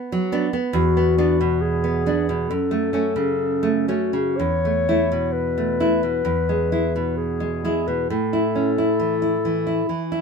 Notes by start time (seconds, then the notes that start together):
Already playing: B3
0.12 F#3
0.32 B3 D4
0.53 B3
0.73 E2 F#4
0.97 B3
1.18 B3 D4
1.41 B2
1.62 G#4
1.84 B3
2.06 B3 D4
2.29 B2
2.50 F#2 A4
2.71 A3
2.93 A3 C#4
3.16 C#3
3.63 A3
3.88 A3 C#4 F#4
4.13 C#3
4.37 E2 C#5
4.65 A3
4.89 A3 E4
5.12 B2
5.33 B4
5.58 A3
5.80 A3 E4
6.03 B2
6.25 E2
6.49 G#3
6.72 G#3 E4
6.96 B2
7.17 G#4
7.40 G#3
7.64 G#3 E4
7.88 B2 B4
8.10 A2 A4
8.33 E4
8.55 C#4
8.78 E4
8.99 E3
9.22 E4
9.45 E3
9.67 E4
9.88 E3 E4
10.12 E4